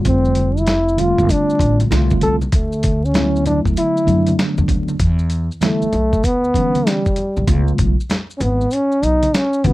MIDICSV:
0, 0, Header, 1, 6, 480
1, 0, Start_track
1, 0, Tempo, 618557
1, 41, Time_signature, 4, 2, 24, 8
1, 7552, End_track
2, 0, Start_track
2, 0, Title_t, "Trombone"
2, 0, Program_c, 0, 57
2, 58, Note_on_c, 0, 60, 97
2, 451, Note_on_c, 0, 64, 97
2, 463, Note_off_c, 0, 60, 0
2, 775, Note_on_c, 0, 65, 103
2, 786, Note_off_c, 0, 64, 0
2, 1015, Note_on_c, 0, 62, 104
2, 1027, Note_off_c, 0, 65, 0
2, 1404, Note_off_c, 0, 62, 0
2, 1729, Note_on_c, 0, 69, 104
2, 1835, Note_off_c, 0, 69, 0
2, 1967, Note_on_c, 0, 57, 81
2, 2365, Note_on_c, 0, 61, 93
2, 2377, Note_off_c, 0, 57, 0
2, 2685, Note_off_c, 0, 61, 0
2, 2692, Note_on_c, 0, 62, 80
2, 2798, Note_off_c, 0, 62, 0
2, 2938, Note_on_c, 0, 64, 92
2, 3378, Note_off_c, 0, 64, 0
2, 4375, Note_on_c, 0, 57, 98
2, 4855, Note_on_c, 0, 59, 121
2, 4867, Note_off_c, 0, 57, 0
2, 5341, Note_on_c, 0, 55, 94
2, 5353, Note_off_c, 0, 59, 0
2, 5811, Note_off_c, 0, 55, 0
2, 6500, Note_on_c, 0, 61, 69
2, 6532, Note_on_c, 0, 59, 85
2, 6544, Note_off_c, 0, 61, 0
2, 6781, Note_on_c, 0, 61, 100
2, 6793, Note_off_c, 0, 59, 0
2, 7017, Note_on_c, 0, 63, 95
2, 7029, Note_off_c, 0, 61, 0
2, 7260, Note_on_c, 0, 61, 93
2, 7271, Note_off_c, 0, 63, 0
2, 7496, Note_on_c, 0, 59, 94
2, 7508, Note_off_c, 0, 61, 0
2, 7552, Note_off_c, 0, 59, 0
2, 7552, End_track
3, 0, Start_track
3, 0, Title_t, "Tine electric piano"
3, 0, Program_c, 1, 4
3, 0, Note_on_c, 1, 50, 59
3, 0, Note_on_c, 1, 55, 63
3, 0, Note_on_c, 1, 57, 57
3, 0, Note_on_c, 1, 60, 52
3, 0, Note_on_c, 1, 65, 70
3, 485, Note_off_c, 1, 50, 0
3, 486, Note_off_c, 1, 55, 0
3, 490, Note_off_c, 1, 57, 0
3, 491, Note_off_c, 1, 60, 0
3, 495, Note_off_c, 1, 65, 0
3, 754, Note_on_c, 1, 50, 72
3, 759, Note_on_c, 1, 55, 67
3, 761, Note_on_c, 1, 56, 58
3, 767, Note_on_c, 1, 60, 73
3, 769, Note_on_c, 1, 65, 88
3, 814, Note_on_c, 1, 57, 75
3, 827, Note_off_c, 1, 56, 0
3, 1444, Note_off_c, 1, 50, 0
3, 1446, Note_off_c, 1, 55, 0
3, 1450, Note_off_c, 1, 60, 0
3, 1452, Note_off_c, 1, 65, 0
3, 1474, Note_off_c, 1, 57, 0
3, 1477, Note_on_c, 1, 50, 81
3, 1480, Note_on_c, 1, 55, 73
3, 1483, Note_on_c, 1, 57, 72
3, 1486, Note_on_c, 1, 60, 74
3, 1488, Note_on_c, 1, 65, 98
3, 1844, Note_off_c, 1, 50, 0
3, 1845, Note_off_c, 1, 55, 0
3, 1847, Note_off_c, 1, 57, 0
3, 1848, Note_off_c, 1, 60, 0
3, 1849, Note_off_c, 1, 65, 0
3, 2433, Note_on_c, 1, 50, 79
3, 2435, Note_on_c, 1, 54, 65
3, 2440, Note_on_c, 1, 57, 72
3, 2444, Note_on_c, 1, 59, 69
3, 2446, Note_on_c, 1, 64, 80
3, 3123, Note_off_c, 1, 50, 0
3, 3124, Note_off_c, 1, 54, 0
3, 3127, Note_off_c, 1, 57, 0
3, 3129, Note_off_c, 1, 59, 0
3, 3130, Note_off_c, 1, 64, 0
3, 3144, Note_on_c, 1, 50, 68
3, 3151, Note_on_c, 1, 54, 64
3, 3151, Note_on_c, 1, 57, 57
3, 3156, Note_on_c, 1, 59, 60
3, 3161, Note_on_c, 1, 62, 73
3, 3839, Note_off_c, 1, 50, 0
3, 3842, Note_off_c, 1, 54, 0
3, 3842, Note_off_c, 1, 57, 0
3, 3845, Note_off_c, 1, 59, 0
3, 3847, Note_off_c, 1, 62, 0
3, 4350, Note_on_c, 1, 50, 67
3, 4355, Note_on_c, 1, 52, 64
3, 4358, Note_on_c, 1, 55, 66
3, 4360, Note_on_c, 1, 59, 70
3, 4364, Note_on_c, 1, 64, 86
3, 4545, Note_off_c, 1, 50, 0
3, 4548, Note_off_c, 1, 52, 0
3, 4549, Note_off_c, 1, 55, 0
3, 4550, Note_off_c, 1, 59, 0
3, 4552, Note_off_c, 1, 64, 0
3, 5079, Note_on_c, 1, 50, 62
3, 5082, Note_on_c, 1, 52, 62
3, 5084, Note_on_c, 1, 54, 50
3, 5090, Note_on_c, 1, 59, 64
3, 5091, Note_on_c, 1, 61, 78
3, 5135, Note_on_c, 1, 55, 58
3, 5148, Note_off_c, 1, 54, 0
3, 5445, Note_off_c, 1, 50, 0
3, 5447, Note_off_c, 1, 52, 0
3, 5450, Note_off_c, 1, 59, 0
3, 5451, Note_off_c, 1, 61, 0
3, 5473, Note_off_c, 1, 55, 0
3, 5796, Note_on_c, 1, 49, 71
3, 5799, Note_on_c, 1, 56, 63
3, 5804, Note_on_c, 1, 57, 61
3, 5806, Note_on_c, 1, 59, 59
3, 5812, Note_on_c, 1, 65, 72
3, 6163, Note_off_c, 1, 49, 0
3, 6165, Note_off_c, 1, 56, 0
3, 6167, Note_off_c, 1, 57, 0
3, 6168, Note_off_c, 1, 59, 0
3, 6171, Note_off_c, 1, 65, 0
3, 7480, Note_on_c, 1, 52, 70
3, 7482, Note_on_c, 1, 54, 69
3, 7484, Note_on_c, 1, 57, 69
3, 7489, Note_on_c, 1, 61, 64
3, 7492, Note_on_c, 1, 66, 75
3, 7552, Note_off_c, 1, 52, 0
3, 7552, Note_off_c, 1, 54, 0
3, 7552, Note_off_c, 1, 57, 0
3, 7552, Note_off_c, 1, 61, 0
3, 7552, Note_off_c, 1, 66, 0
3, 7552, End_track
4, 0, Start_track
4, 0, Title_t, "Upright bass"
4, 0, Program_c, 2, 32
4, 41, Note_on_c, 2, 29, 104
4, 886, Note_off_c, 2, 29, 0
4, 918, Note_on_c, 2, 31, 98
4, 982, Note_off_c, 2, 31, 0
4, 1238, Note_on_c, 2, 33, 91
4, 1425, Note_off_c, 2, 33, 0
4, 1480, Note_on_c, 2, 36, 90
4, 1666, Note_off_c, 2, 36, 0
4, 1720, Note_on_c, 2, 36, 87
4, 1906, Note_off_c, 2, 36, 0
4, 1960, Note_on_c, 2, 38, 104
4, 2805, Note_off_c, 2, 38, 0
4, 2835, Note_on_c, 2, 38, 84
4, 2901, Note_off_c, 2, 38, 0
4, 3158, Note_on_c, 2, 42, 83
4, 3345, Note_off_c, 2, 42, 0
4, 3552, Note_on_c, 2, 40, 92
4, 3619, Note_off_c, 2, 40, 0
4, 3632, Note_on_c, 2, 38, 84
4, 3821, Note_off_c, 2, 38, 0
4, 3876, Note_on_c, 2, 40, 92
4, 4249, Note_off_c, 2, 40, 0
4, 4598, Note_on_c, 2, 35, 71
4, 4785, Note_off_c, 2, 35, 0
4, 4840, Note_on_c, 2, 38, 69
4, 5026, Note_off_c, 2, 38, 0
4, 5719, Note_on_c, 2, 35, 88
4, 5783, Note_off_c, 2, 35, 0
4, 5800, Note_on_c, 2, 37, 107
4, 5986, Note_off_c, 2, 37, 0
4, 6043, Note_on_c, 2, 35, 88
4, 6163, Note_off_c, 2, 35, 0
4, 6520, Note_on_c, 2, 32, 82
4, 6706, Note_off_c, 2, 32, 0
4, 7004, Note_on_c, 2, 35, 80
4, 7188, Note_off_c, 2, 35, 0
4, 7484, Note_on_c, 2, 37, 103
4, 7552, Note_off_c, 2, 37, 0
4, 7552, End_track
5, 0, Start_track
5, 0, Title_t, "Muted upright bass strokes"
5, 4517, Note_on_c, 9, 29, 46
5, 4594, Note_off_c, 9, 29, 0
5, 7552, End_track
6, 0, Start_track
6, 0, Title_t, "Drums"
6, 39, Note_on_c, 9, 42, 88
6, 40, Note_on_c, 9, 36, 97
6, 43, Note_on_c, 9, 82, 55
6, 116, Note_off_c, 9, 42, 0
6, 118, Note_off_c, 9, 36, 0
6, 121, Note_off_c, 9, 82, 0
6, 193, Note_on_c, 9, 82, 40
6, 271, Note_off_c, 9, 82, 0
6, 272, Note_on_c, 9, 42, 88
6, 285, Note_on_c, 9, 63, 48
6, 285, Note_on_c, 9, 82, 47
6, 350, Note_off_c, 9, 42, 0
6, 362, Note_off_c, 9, 63, 0
6, 362, Note_off_c, 9, 82, 0
6, 445, Note_on_c, 9, 82, 43
6, 516, Note_on_c, 9, 42, 80
6, 520, Note_off_c, 9, 82, 0
6, 520, Note_on_c, 9, 82, 59
6, 523, Note_on_c, 9, 38, 121
6, 593, Note_off_c, 9, 42, 0
6, 597, Note_off_c, 9, 82, 0
6, 601, Note_off_c, 9, 38, 0
6, 685, Note_on_c, 9, 82, 42
6, 762, Note_off_c, 9, 82, 0
6, 762, Note_on_c, 9, 42, 82
6, 762, Note_on_c, 9, 64, 75
6, 762, Note_on_c, 9, 82, 59
6, 840, Note_off_c, 9, 42, 0
6, 840, Note_off_c, 9, 64, 0
6, 840, Note_off_c, 9, 82, 0
6, 918, Note_on_c, 9, 36, 86
6, 924, Note_on_c, 9, 82, 48
6, 996, Note_off_c, 9, 36, 0
6, 1002, Note_off_c, 9, 82, 0
6, 1002, Note_on_c, 9, 82, 73
6, 1003, Note_on_c, 9, 36, 77
6, 1012, Note_on_c, 9, 42, 89
6, 1079, Note_off_c, 9, 82, 0
6, 1081, Note_off_c, 9, 36, 0
6, 1090, Note_off_c, 9, 42, 0
6, 1162, Note_on_c, 9, 82, 45
6, 1237, Note_on_c, 9, 36, 74
6, 1240, Note_off_c, 9, 82, 0
6, 1246, Note_on_c, 9, 42, 72
6, 1246, Note_on_c, 9, 82, 39
6, 1314, Note_off_c, 9, 36, 0
6, 1323, Note_off_c, 9, 42, 0
6, 1324, Note_off_c, 9, 82, 0
6, 1396, Note_on_c, 9, 42, 60
6, 1399, Note_on_c, 9, 63, 62
6, 1399, Note_on_c, 9, 82, 48
6, 1474, Note_off_c, 9, 42, 0
6, 1476, Note_off_c, 9, 63, 0
6, 1476, Note_off_c, 9, 82, 0
6, 1487, Note_on_c, 9, 82, 51
6, 1488, Note_on_c, 9, 42, 91
6, 1489, Note_on_c, 9, 38, 93
6, 1564, Note_off_c, 9, 82, 0
6, 1566, Note_off_c, 9, 42, 0
6, 1567, Note_off_c, 9, 38, 0
6, 1633, Note_on_c, 9, 63, 58
6, 1633, Note_on_c, 9, 82, 50
6, 1640, Note_on_c, 9, 36, 99
6, 1711, Note_off_c, 9, 63, 0
6, 1711, Note_off_c, 9, 82, 0
6, 1718, Note_off_c, 9, 36, 0
6, 1718, Note_on_c, 9, 42, 70
6, 1722, Note_on_c, 9, 64, 50
6, 1722, Note_on_c, 9, 82, 35
6, 1795, Note_off_c, 9, 42, 0
6, 1799, Note_off_c, 9, 64, 0
6, 1799, Note_off_c, 9, 82, 0
6, 1873, Note_on_c, 9, 63, 59
6, 1873, Note_on_c, 9, 82, 43
6, 1951, Note_off_c, 9, 63, 0
6, 1951, Note_off_c, 9, 82, 0
6, 1957, Note_on_c, 9, 42, 92
6, 1959, Note_on_c, 9, 36, 99
6, 1962, Note_on_c, 9, 82, 55
6, 2035, Note_off_c, 9, 42, 0
6, 2036, Note_off_c, 9, 36, 0
6, 2040, Note_off_c, 9, 82, 0
6, 2114, Note_on_c, 9, 82, 43
6, 2191, Note_off_c, 9, 82, 0
6, 2195, Note_on_c, 9, 42, 92
6, 2202, Note_on_c, 9, 36, 91
6, 2208, Note_on_c, 9, 63, 45
6, 2208, Note_on_c, 9, 82, 44
6, 2273, Note_off_c, 9, 42, 0
6, 2280, Note_off_c, 9, 36, 0
6, 2286, Note_off_c, 9, 63, 0
6, 2286, Note_off_c, 9, 82, 0
6, 2369, Note_on_c, 9, 82, 42
6, 2438, Note_on_c, 9, 42, 72
6, 2444, Note_off_c, 9, 82, 0
6, 2444, Note_on_c, 9, 64, 58
6, 2444, Note_on_c, 9, 82, 57
6, 2445, Note_on_c, 9, 38, 109
6, 2515, Note_off_c, 9, 42, 0
6, 2522, Note_off_c, 9, 64, 0
6, 2522, Note_off_c, 9, 82, 0
6, 2523, Note_off_c, 9, 38, 0
6, 2608, Note_on_c, 9, 82, 40
6, 2682, Note_on_c, 9, 42, 74
6, 2686, Note_off_c, 9, 82, 0
6, 2688, Note_on_c, 9, 64, 74
6, 2688, Note_on_c, 9, 82, 59
6, 2760, Note_off_c, 9, 42, 0
6, 2765, Note_off_c, 9, 64, 0
6, 2765, Note_off_c, 9, 82, 0
6, 2837, Note_on_c, 9, 36, 82
6, 2845, Note_on_c, 9, 82, 49
6, 2914, Note_off_c, 9, 36, 0
6, 2922, Note_off_c, 9, 82, 0
6, 2922, Note_on_c, 9, 82, 71
6, 2927, Note_on_c, 9, 42, 95
6, 3000, Note_off_c, 9, 82, 0
6, 3005, Note_off_c, 9, 42, 0
6, 3082, Note_on_c, 9, 82, 45
6, 3160, Note_off_c, 9, 82, 0
6, 3165, Note_on_c, 9, 42, 72
6, 3166, Note_on_c, 9, 82, 44
6, 3242, Note_off_c, 9, 42, 0
6, 3244, Note_off_c, 9, 82, 0
6, 3309, Note_on_c, 9, 42, 59
6, 3319, Note_on_c, 9, 63, 57
6, 3319, Note_on_c, 9, 82, 44
6, 3387, Note_off_c, 9, 42, 0
6, 3396, Note_off_c, 9, 63, 0
6, 3396, Note_off_c, 9, 82, 0
6, 3406, Note_on_c, 9, 42, 75
6, 3407, Note_on_c, 9, 38, 98
6, 3407, Note_on_c, 9, 82, 51
6, 3483, Note_off_c, 9, 42, 0
6, 3484, Note_off_c, 9, 82, 0
6, 3485, Note_off_c, 9, 38, 0
6, 3552, Note_on_c, 9, 63, 67
6, 3552, Note_on_c, 9, 82, 45
6, 3629, Note_off_c, 9, 63, 0
6, 3629, Note_off_c, 9, 82, 0
6, 3632, Note_on_c, 9, 36, 87
6, 3637, Note_on_c, 9, 42, 71
6, 3641, Note_on_c, 9, 64, 57
6, 3641, Note_on_c, 9, 82, 39
6, 3710, Note_off_c, 9, 36, 0
6, 3715, Note_off_c, 9, 42, 0
6, 3719, Note_off_c, 9, 64, 0
6, 3719, Note_off_c, 9, 82, 0
6, 3789, Note_on_c, 9, 63, 57
6, 3789, Note_on_c, 9, 82, 44
6, 3866, Note_off_c, 9, 63, 0
6, 3866, Note_off_c, 9, 82, 0
6, 3876, Note_on_c, 9, 42, 87
6, 3877, Note_on_c, 9, 36, 107
6, 3877, Note_on_c, 9, 82, 57
6, 3954, Note_off_c, 9, 42, 0
6, 3955, Note_off_c, 9, 36, 0
6, 3955, Note_off_c, 9, 82, 0
6, 4027, Note_on_c, 9, 82, 37
6, 4104, Note_off_c, 9, 82, 0
6, 4111, Note_on_c, 9, 42, 81
6, 4120, Note_on_c, 9, 82, 45
6, 4189, Note_off_c, 9, 42, 0
6, 4198, Note_off_c, 9, 82, 0
6, 4280, Note_on_c, 9, 82, 39
6, 4355, Note_off_c, 9, 82, 0
6, 4355, Note_on_c, 9, 64, 55
6, 4355, Note_on_c, 9, 82, 51
6, 4359, Note_on_c, 9, 42, 75
6, 4367, Note_on_c, 9, 38, 114
6, 4432, Note_off_c, 9, 64, 0
6, 4432, Note_off_c, 9, 82, 0
6, 4437, Note_off_c, 9, 42, 0
6, 4444, Note_off_c, 9, 38, 0
6, 4516, Note_on_c, 9, 82, 43
6, 4594, Note_off_c, 9, 82, 0
6, 4598, Note_on_c, 9, 64, 83
6, 4598, Note_on_c, 9, 82, 61
6, 4599, Note_on_c, 9, 42, 68
6, 4676, Note_off_c, 9, 42, 0
6, 4676, Note_off_c, 9, 64, 0
6, 4676, Note_off_c, 9, 82, 0
6, 4755, Note_on_c, 9, 36, 84
6, 4757, Note_on_c, 9, 82, 45
6, 4833, Note_off_c, 9, 36, 0
6, 4835, Note_off_c, 9, 82, 0
6, 4838, Note_on_c, 9, 82, 61
6, 4841, Note_on_c, 9, 36, 81
6, 4848, Note_on_c, 9, 42, 79
6, 4915, Note_off_c, 9, 82, 0
6, 4918, Note_off_c, 9, 36, 0
6, 4926, Note_off_c, 9, 42, 0
6, 4999, Note_on_c, 9, 82, 44
6, 5076, Note_on_c, 9, 36, 72
6, 5077, Note_off_c, 9, 82, 0
6, 5083, Note_on_c, 9, 82, 48
6, 5087, Note_on_c, 9, 42, 70
6, 5154, Note_off_c, 9, 36, 0
6, 5160, Note_off_c, 9, 82, 0
6, 5165, Note_off_c, 9, 42, 0
6, 5238, Note_on_c, 9, 63, 62
6, 5238, Note_on_c, 9, 82, 47
6, 5239, Note_on_c, 9, 42, 53
6, 5315, Note_off_c, 9, 63, 0
6, 5315, Note_off_c, 9, 82, 0
6, 5316, Note_off_c, 9, 42, 0
6, 5329, Note_on_c, 9, 82, 49
6, 5330, Note_on_c, 9, 42, 85
6, 5331, Note_on_c, 9, 38, 85
6, 5407, Note_off_c, 9, 82, 0
6, 5408, Note_off_c, 9, 42, 0
6, 5409, Note_off_c, 9, 38, 0
6, 5478, Note_on_c, 9, 82, 48
6, 5480, Note_on_c, 9, 36, 93
6, 5556, Note_off_c, 9, 82, 0
6, 5557, Note_on_c, 9, 42, 66
6, 5558, Note_off_c, 9, 36, 0
6, 5564, Note_on_c, 9, 64, 55
6, 5564, Note_on_c, 9, 82, 34
6, 5635, Note_off_c, 9, 42, 0
6, 5641, Note_off_c, 9, 64, 0
6, 5641, Note_off_c, 9, 82, 0
6, 5716, Note_on_c, 9, 63, 57
6, 5716, Note_on_c, 9, 82, 39
6, 5794, Note_off_c, 9, 63, 0
6, 5794, Note_off_c, 9, 82, 0
6, 5801, Note_on_c, 9, 36, 105
6, 5802, Note_on_c, 9, 42, 92
6, 5809, Note_on_c, 9, 82, 61
6, 5878, Note_off_c, 9, 36, 0
6, 5879, Note_off_c, 9, 42, 0
6, 5886, Note_off_c, 9, 82, 0
6, 5958, Note_on_c, 9, 82, 37
6, 6035, Note_off_c, 9, 82, 0
6, 6040, Note_on_c, 9, 42, 92
6, 6045, Note_on_c, 9, 36, 108
6, 6048, Note_on_c, 9, 82, 47
6, 6117, Note_off_c, 9, 42, 0
6, 6122, Note_off_c, 9, 36, 0
6, 6126, Note_off_c, 9, 82, 0
6, 6210, Note_on_c, 9, 82, 46
6, 6282, Note_off_c, 9, 82, 0
6, 6282, Note_on_c, 9, 64, 58
6, 6282, Note_on_c, 9, 82, 60
6, 6284, Note_on_c, 9, 42, 80
6, 6292, Note_on_c, 9, 38, 110
6, 6359, Note_off_c, 9, 64, 0
6, 6359, Note_off_c, 9, 82, 0
6, 6362, Note_off_c, 9, 42, 0
6, 6370, Note_off_c, 9, 38, 0
6, 6444, Note_on_c, 9, 82, 46
6, 6521, Note_off_c, 9, 82, 0
6, 6522, Note_on_c, 9, 64, 83
6, 6522, Note_on_c, 9, 82, 58
6, 6526, Note_on_c, 9, 42, 77
6, 6600, Note_off_c, 9, 64, 0
6, 6600, Note_off_c, 9, 82, 0
6, 6603, Note_off_c, 9, 42, 0
6, 6682, Note_on_c, 9, 82, 49
6, 6759, Note_off_c, 9, 82, 0
6, 6759, Note_on_c, 9, 82, 66
6, 6774, Note_on_c, 9, 42, 81
6, 6837, Note_off_c, 9, 82, 0
6, 6852, Note_off_c, 9, 42, 0
6, 6921, Note_on_c, 9, 82, 49
6, 6999, Note_off_c, 9, 82, 0
6, 7008, Note_on_c, 9, 82, 46
6, 7010, Note_on_c, 9, 42, 66
6, 7085, Note_off_c, 9, 82, 0
6, 7087, Note_off_c, 9, 42, 0
6, 7160, Note_on_c, 9, 42, 55
6, 7161, Note_on_c, 9, 63, 60
6, 7161, Note_on_c, 9, 82, 41
6, 7238, Note_off_c, 9, 42, 0
6, 7238, Note_off_c, 9, 63, 0
6, 7238, Note_off_c, 9, 82, 0
6, 7248, Note_on_c, 9, 82, 52
6, 7251, Note_on_c, 9, 42, 88
6, 7252, Note_on_c, 9, 38, 93
6, 7326, Note_off_c, 9, 82, 0
6, 7329, Note_off_c, 9, 42, 0
6, 7330, Note_off_c, 9, 38, 0
6, 7396, Note_on_c, 9, 82, 50
6, 7474, Note_off_c, 9, 82, 0
6, 7481, Note_on_c, 9, 42, 63
6, 7484, Note_on_c, 9, 36, 98
6, 7485, Note_on_c, 9, 64, 55
6, 7485, Note_on_c, 9, 82, 34
6, 7552, Note_off_c, 9, 36, 0
6, 7552, Note_off_c, 9, 42, 0
6, 7552, Note_off_c, 9, 64, 0
6, 7552, Note_off_c, 9, 82, 0
6, 7552, End_track
0, 0, End_of_file